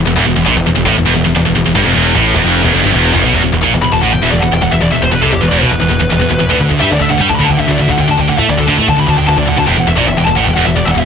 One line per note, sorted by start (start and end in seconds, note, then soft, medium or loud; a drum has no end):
0.06 0.15 E1 medium
0.06 0.15 E2 medium
0.16 0.25 E1 loud
0.16 0.24 E2 loud
0.16 cajon bass loud
0.26 0.36 E1 medium
0.26 0.35 E2 medium
0.36 0.45 E1 medium
0.36 0.46 E2 medium
0.36 cajon slap soft
0.45 0.55 A#1 loud
0.45 0.55 A#2 loud
0.45 cajon bass loud
0.55 0.66 E1 medium
0.55 0.65 E2 medium
0.55 cajon slap loud
0.66 0.76 E1 medium
0.66 0.74 E2 medium
0.75 0.85 E1 medium
0.75 0.86 E2 medium
0.75 cajon slap soft
0.85 0.95 A1 loud
0.85 0.95 A2 loud
0.85 cajon bass loud
0.96 1.06 E1 medium
0.96 1.04 E2 medium
0.96 cajon slap medium
1.05 1.16 E1 medium
1.05 1.14 E2 loud
1.15 1.26 E1 medium
1.15 1.24 E2 medium
1.15 cajon slap soft
1.25 1.36 E1 medium
1.25 1.34 E2 medium
1.35 1.46 E1 medium
1.35 1.44 E2 medium
1.35 cajon slap loud
1.46 1.56 E1 medium
1.46 1.55 E2 medium
1.55 1.65 E1 medium
1.55 1.65 E2 medium
1.55 cajon slap soft
1.66 1.74 E1 medium
1.66 1.75 E2 medium
1.75 1.84 G1 loud
1.75 1.85 G2 loud
1.75 cajon bass loud
1.85 1.95 F1 loud
1.85 1.95 F2 loud
1.95 2.14 E1 loud
1.95 2.14 E2 loud
1.95 cajon slap soft
2.14 2.33 A1 loud
2.14 2.34 A2 medium
2.14 cajon bass loud
2.34 2.44 E1 medium
2.34 2.43 E2 medium
2.34 cajon bass loud
2.44 2.63 F1 medium
2.44 2.63 F2 loud
2.55 cajon slap medium
2.64 2.73 E1 medium
2.64 2.73 E2 loud
2.64 cajon bass loud
2.74 2.83 F1 medium
2.74 2.83 F2 loud
2.74 cajon slap soft
2.83 2.93 G1 loud
2.83 2.92 G2 loud
2.92 3.13 E1 medium
2.92 3.12 E2 loud
2.92 cajon bass loud
3.13 3.22 F1 medium
3.13 3.23 F2 medium
3.13 cajon bass loud
3.23 3.33 B1 medium
3.23 3.33 B2 loud
3.33 3.43 E1 medium
3.33 3.42 E2 medium
3.33 cajon bass loud
3.43 3.53 E1 medium
3.43 3.51 E2 medium
3.43 cajon bass medium
3.52 3.62 E1 medium
3.52 3.63 E2 medium
3.52 cajon bass medium
3.62 3.72 A#1 medium
3.62 3.72 A#2 loud
3.62 cajon bass medium
3.72 3.82 E1 medium
3.72 3.80 E2 medium
3.72 cajon slap loud
3.81 3.92 E1 medium
3.81 3.91 E2 medium
3.81 3.92 B5 medium
3.81 cajon bass medium
3.92 4.02 E1 medium
3.92 4.02 E2 medium
3.92 4.02 A5 loud
3.92 cajon bass medium
4.01 4.12 A1 medium
4.01 4.12 A2 loud
4.01 4.12 F#5 medium
4.01 cajon bass medium
4.12 4.22 E1 medium
4.12 4.21 E2 medium
4.12 4.22 G5 medium
4.12 cajon bass medium
4.22 4.32 E1 medium
4.22 4.32 E2 medium
4.22 4.31 E5 medium
4.22 cajon bass medium
4.31 4.42 E1 medium
4.31 4.41 E2 medium
4.31 4.42 D5 medium
4.31 cajon bass medium
4.40 4.52 E1 medium
4.40 4.51 E2 medium
4.40 4.51 F#5 medium
4.40 cajon bass medium
4.52 4.61 E1 medium
4.52 4.60 E2 medium
4.52 4.62 G5 medium
4.52 cajon slap loud
4.61 4.71 E1 medium
4.61 4.71 E2 medium
4.61 4.72 F#5 medium
4.61 cajon bass medium
4.71 4.81 E1 medium
4.71 4.80 E2 medium
4.71 4.81 E5 medium
4.71 cajon bass medium
4.81 4.91 E1 medium
4.81 4.90 E2 medium
4.81 4.91 D5 medium
4.81 cajon bass medium
4.91 5.01 E1 medium
4.91 5.01 E2 medium
4.91 5.02 E5 medium
4.91 cajon bass medium
5.02 5.11 E1 medium
5.02 5.11 E2 medium
5.02 5.11 C5 medium
5.02 cajon bass medium
5.12 5.21 E1 medium
5.12 5.22 E2 medium
5.12 5.21 B4 medium
5.12 cajon bass medium
5.21 5.31 C2 medium
5.21 5.32 C3 loud
5.21 5.32 A4 medium
5.21 cajon bass medium
5.32 5.41 E1 medium
5.32 5.42 E2 medium
5.32 5.42 G4 medium
5.32 cajon slap loud
5.41 5.51 E1 medium
5.41 5.51 E2 medium
5.41 5.49 B4 medium
5.41 cajon bass medium
5.49 5.61 E1 medium
5.49 5.61 E2 medium
5.49 5.61 D5 medium
5.49 cajon bass medium
5.61 5.71 B1 medium
5.61 5.71 B2 medium
5.61 6.60 B4 medium
5.61 cajon bass medium
5.71 5.80 E1 medium
5.71 5.79 E2 medium
5.71 cajon bass medium
5.80 5.90 E1 medium
5.80 5.87 E2 medium
5.80 cajon bass medium
5.89 6.00 E1 medium
5.89 5.98 E2 medium
5.89 cajon bass medium
5.99 6.10 E1 medium
5.99 6.09 E2 medium
5.99 cajon bass medium
6.10 6.20 E1 medium
6.10 6.18 E2 medium
6.10 cajon slap loud
6.19 6.30 E1 medium
6.19 6.28 E2 medium
6.19 cajon bass medium
6.29 6.40 E1 medium
6.29 6.38 E2 medium
6.29 cajon bass medium
6.39 6.50 E1 medium
6.39 6.50 E2 medium
6.39 cajon bass medium
6.49 6.60 D2 medium
6.49 6.57 D3 loud
6.49 cajon bass medium
6.58 6.70 D2 medium
6.58 6.68 D3 medium
6.58 cajon bass medium
6.69 6.80 D2 medium
6.69 6.80 D3 medium
6.69 cajon bass medium
6.79 6.90 G2 medium
6.79 6.89 G3 loud
6.79 6.90 E5 medium
6.79 cajon bass medium
6.90 6.99 D2 medium
6.90 6.98 D3 medium
6.90 7.02 D5 medium
6.90 cajon slap loud
6.99 7.09 D2 medium
6.99 7.08 D3 medium
6.99 7.11 E5 medium
6.99 cajon bass medium
7.09 7.19 D2 medium
7.09 7.20 D3 medium
7.09 7.21 F#5 loud
7.09 cajon bass medium
7.18 7.29 G2 medium
7.18 7.28 G3 loud
7.18 7.30 G5 medium
7.18 cajon bass medium
7.28 7.39 D2 medium
7.28 7.38 D3 medium
7.28 7.35 A5 medium
7.28 cajon bass medium
7.35 7.47 D3 medium
7.35 7.42 B5 loud
7.40 7.49 D2 medium
7.40 cajon bass medium
7.45 7.57 D3 medium
7.45 7.51 A5 medium
7.49 7.59 D2 medium
7.49 7.60 G5 medium
7.49 cajon bass medium
7.59 7.67 D2 medium
7.59 7.67 D3 medium
7.59 7.72 E5 medium
7.59 cajon bass medium
7.67 7.78 D2 medium
7.67 7.77 D3 medium
7.67 cajon slap loud
7.72 7.80 D5 medium
7.78 7.88 D2 medium
7.78 7.88 D3 medium
7.78 7.90 E5 medium
7.78 cajon bass medium
7.89 7.98 D2 medium
7.89 7.97 D3 medium
7.89 8.00 F#5 loud
7.89 cajon bass medium
7.98 8.08 D2 medium
7.98 8.07 D3 medium
7.98 8.10 G5 medium
7.98 cajon bass medium
8.08 8.18 D2 medium
8.08 8.16 D3 medium
8.08 8.20 A5 medium
8.08 cajon bass medium
8.18 8.28 D2 medium
8.18 8.27 D3 medium
8.18 8.29 G5 medium
8.18 cajon bass medium
8.28 8.38 D2 medium
8.28 8.38 D3 medium
8.28 8.39 F#5 loud
8.28 cajon bass medium
8.38 8.48 A2 loud
8.38 8.48 A3 loud
8.38 8.48 E5 medium
8.38 cajon bass medium
8.48 8.57 D2 medium
8.48 8.57 D3 medium
8.48 8.59 D5 medium
8.48 cajon slap loud
8.57 8.68 D2 medium
8.57 8.66 D3 medium
8.57 8.64 A4 medium
8.57 cajon bass medium
8.67 8.77 D2 medium
8.67 8.77 D3 medium
8.67 cajon bass medium
8.77 8.87 A2 medium
8.77 8.87 A3 loud
8.77 cajon bass medium
8.87 8.97 D2 medium
8.87 8.95 D3 medium
8.87 8.98 A5 medium
8.87 cajon bass medium
8.96 9.07 D2 medium
8.96 9.06 D3 medium
8.96 9.09 B5 loud
8.96 cajon bass medium
9.07 9.17 D2 medium
9.07 9.15 D3 medium
9.07 9.18 A5 loud
9.07 cajon bass medium
9.16 9.27 D2 medium
9.16 9.25 D3 medium
9.16 9.27 G5 medium
9.16 cajon bass medium
9.27 9.37 D2 medium
9.27 9.36 D3 medium
9.27 9.37 A5 loud
9.27 cajon slap loud
9.37 9.47 D2 medium
9.37 9.45 D3 medium
9.37 9.48 D5 medium
9.37 cajon bass medium
9.46 9.57 D2 medium
9.46 9.55 D3 medium
9.46 9.58 F#5 loud
9.46 cajon bass medium
9.57 9.66 D2 medium
9.57 9.67 D3 medium
9.57 9.67 A5 loud
9.57 cajon bass medium
9.66 9.76 E1 medium
9.66 9.76 E2 loud
9.66 9.79 G5 medium
9.66 cajon bass medium
9.77 9.86 E1 medium
9.77 9.86 E2 medium
9.77 9.88 F#5 medium
9.77 cajon bass medium
9.87 9.96 E1 medium
9.87 9.97 E2 medium
9.87 9.96 E5 medium
9.87 cajon bass medium
9.96 10.06 A#1 medium
9.96 10.06 A#2 loud
9.96 10.07 D5 medium
9.96 cajon bass medium
10.05 10.16 E1 medium
10.05 10.16 E2 medium
10.05 10.17 E5 medium
10.05 cajon slap loud
10.17 10.26 E1 medium
10.17 10.26 E2 medium
10.17 10.25 G5 medium
10.17 cajon bass medium
10.25 10.36 E1 medium
10.25 10.37 E2 medium
10.25 10.36 A5 loud
10.25 cajon bass medium
10.36 10.46 A1 medium
10.36 10.46 A2 medium
10.36 10.45 F#5 medium
10.36 cajon bass medium
10.45 10.56 E1 medium
10.45 10.55 E2 medium
10.45 10.54 G5 loud
10.45 cajon bass medium
10.54 10.66 E1 medium
10.54 10.66 E2 loud
10.54 10.65 F#5 medium
10.54 cajon bass medium
10.65 10.75 E1 medium
10.65 10.75 E2 medium
10.65 10.75 E5 medium
10.65 cajon bass medium
10.75 10.85 E1 medium
10.75 10.85 E2 medium
10.75 10.85 D5 medium
10.75 cajon bass medium
10.85 10.95 E1 medium
10.85 10.93 E2 medium
10.85 10.92 E5 medium
10.85 cajon slap loud
10.91 11.05 E2 medium
10.91 11.00 F#5 medium
10.96 11.05 E1 medium
10.96 11.05 E5 medium
10.96 cajon bass medium